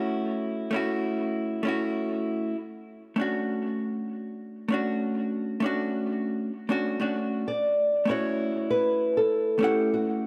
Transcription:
Already playing: A3 C#4 E4 F#4
0.71 A3 C#4 E4
0.76 F#4
1.63 A3 C#4 E4
1.68 F#4
3.16 A3 C#4 D4
3.21 F#4
4.68 A3 C#4 D4
4.74 F#4
5.60 A3 C#4 D4
5.66 F#4
6.69 A3 C#4 D4 F#4
7.00 A3 C#4 D4 F#4
7.48 D5
8.05 A3 C#4 E4
8.10 F#4 C#5
8.70 B4
9.17 A4
9.59 A3 C#4 E4
9.63 G4 F#5
9.94 F#4

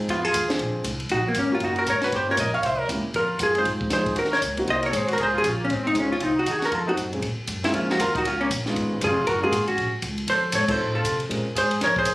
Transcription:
0.08 F2 B3 F4, kick, ride
0.25 F4 G#4
0.34 D#2, kick, hi-hat pedal, ride
0.48 C4 D4 F4 G#4, snare, ride
0.59 A#1, kick, ride
0.84 C2, kick, hi-hat pedal, ride
1.00 ride
1.09 A#1 D#4 F#4, kick, ride
1.26 F#3 A#3
1.34 G#1 A#3, kick, hi-hat pedal, ride
1.39 C#4
1.51 A#3 C#4 F4 F#4
1.60 F#1 D#4, kick, ride
1.64 F#4
1.76 F#4 A#4, ride
1.86 G#1 A#4 C#5, kick, hi-hat pedal, ride
2.02 F#4 B4, snare, ride
2.12 G1 G4, kick, ride
2.16 C5
2.27 A#3 C#4 F4 G4 A#4
2.31 C#5
2.37 A#1 A#4 D#5, kick, hi-hat pedal, ride
2.54 C#5 F5
2.63 C2 C5 E5, kick, ride
2.79 A#4 C#5
2.89 C#2 A#3 C#4 E4 G4, kick, hi-hat pedal, ride
3.04 muted upright bass stroke
3.14 F2 F4 A#4, kick, ride
3.39 F#2 F4, kick, hi-hat pedal, ride
3.43 G#4
3.54 G#3 C4 D#4 F4 G#4, ride
3.58 C5
3.65 G#2, kick, ride
3.81 kick
3.90 F2 G#3 C4 D#4 F4 G#4 C5, kick, snare, hi-hat pedal, ride
4.06 kick, ride
4.15 D#2 F#4 A#4, kick, ride
4.25 snare
4.31 A#4 C#5, snare
4.42 C#2, kick, hi-hat pedal, ride
4.57 A#3 C4 D#4 F#4, ride
4.67 C2 C5 D#5, kick, ride
4.83 A#4 C#5, ride
4.93 G#1 G#4, kick, hi-hat pedal, ride
4.98 C5
5.07 F#4, ride
5.13 A#4
5.18 C#2 G#4, kick, ride
5.23 C5
5.33 F4
5.38 G#4
5.43 A#1 C#4, kick, hi-hat pedal, ride
5.49 F4
5.58 A#3
5.65 C#4
5.69 G#1 G#3, kick, ride
5.73 C4
5.82 C4
5.87 D#4
5.95 C#2 G#3 C4 D#4 F4, kick, hi-hat pedal, ride
6.00 C#4
6.10 C#4 F4
6.20 C2 C4 D#4, kick, ride
6.35 D#4
6.39 F#4
6.46 D#2 D#4, kick, hi-hat pedal, ride
6.51 G#4
6.59 F#4, snare, ride
6.65 A#4
6.71 F2 F4 A4, kick, ride
6.86 A3 C4 D#4 F#4
6.97 F#2, kick, hi-hat pedal, ride
7.12 A#2 G#3 C4 C#4 G#4, ride
7.22 A#2, kick, ride
7.38 muted upright bass stroke
7.47 F#2, kick, hi-hat pedal, ride
7.63 G#3 A#3 C4 C#4 E4 F4, snare, ride
7.73 F2 C#4 F4, kick, ride
7.89 D#4 F#4, snare
7.99 D#2 F4 A#4, kick, hi-hat pedal, ride
8.15 D#4 F#4, kick, ride
8.25 C#2 C#4 F4, kick, ride
8.41 A#3 C#4
8.51 A#1, kick, hi-hat pedal, ride
8.66 G#3 B3 C#4 D#4 F4, snare
8.76 G#1, kick, ride
9.01 F1 F4 G#4, kick, hi-hat pedal, ride
9.27 F#1 F#4 A#4, kick, ride
9.42 G#3 A#3 C#4 F4 F#4 G#4
9.52 G#1, kick, hi-hat pedal, ride
9.67 C#4 F#4, ride
9.77 A#1, kick, ride
9.92 muted upright bass stroke
10.02 C#2, kick, hi-hat pedal, ride
10.18 ride
10.27 F2 A4 C5, kick, ride
10.52 G#2 A4 C#5, kick, hi-hat pedal, ride
10.68 A3 C4 D#4 F4 A4 C5, kick, crash
10.93 F4 A4
11.04 C3, kick, hi-hat pedal, ride
11.20 ride
11.29 A#2 G#3 C4 C#4 F4 A#4, kick, ride
11.55 G#2 G#4 C5, kick, hi-hat pedal, ride
11.71 ride
11.81 F2 A#4 C#5, kick, snare, ride
11.96 G#4 C5, kick
12.05 C#2, kick, hi-hat pedal, ride

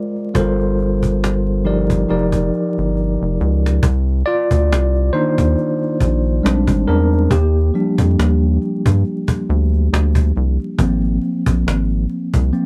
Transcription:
Already playing: G#3 F4 A#4 D5
0.16 cajon slap
0.34 G1 G3 F4 A4 A#4 C5, cajon bass
0.60 cajon slap
0.79 cajon slap
1.03 cajon bass
1.24 cajon slap
1.47 cajon slap
1.65 F3 D#4 G4 A#4 D5, cajon slap
1.90 cajon bass, cajon slap
2.09 F1 F3 D#4 G4 A#4 D5, cajon slap
2.32 F1, cajon bass, cajon slap
2.54 cajon slap
2.78 G1, cajon slap
2.97 cajon slap
3.22 F1, cajon slap
3.40 C#2, cajon slap
3.66 cajon slap
3.83 C2, cajon bass
4.09 cajon slap
4.26 F4 D5, cajon slap
4.51 D2, cajon bass
4.72 C2, cajon slap
4.95 cajon slap
5.13 D#3 A#3 D4 D#4 C5, cajon slap
5.38 D#2, cajon bass
5.58 cajon slap
5.83 cajon slap
6.00 A#1, cajon bass
6.26 cajon slap
6.43 A#1 G3 G#3 C4 D4, cajon slap
6.67 G#1, cajon bass
6.88 E2 D4 A#4, cajon slap
7.13 cajon slap
7.31 D#2 A#3 G4, cajon bass
7.56 cajon slap
7.74 F3 G3 D4, cajon slap
7.98 F2, cajon bass
8.19 D#2, cajon slap
8.42 cajon slap
8.62 cajon slap
8.86 G2, cajon bass
9.05 cajon slap
9.28 cajon bass
9.50 D2, cajon slap
9.73 cajon slap
9.93 D2, cajon slap
10.15 cajon bass
10.36 C2, cajon slap
10.60 cajon slap
10.78 G#1 F3 A#3 C4, cajon bass
11.04 cajon slap
11.23 cajon slap
11.46 A#1, cajon bass
11.67 G#1, cajon slap
11.90 cajon slap
12.10 cajon slap
12.34 C2, cajon bass
12.53 F3 A#3 C4, cajon slap

